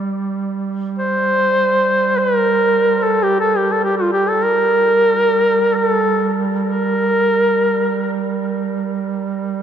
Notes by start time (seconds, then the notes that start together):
Already playing: G3
0.99 C5
2.18 B4
2.37 A#4
3.03 A4
3.23 G4
3.41 A4
3.57 G4
3.72 A4
3.85 G4
3.97 F4
4.13 G4
4.28 A4
4.44 A#4
5.75 A#4
5.87 A4
6.68 A#4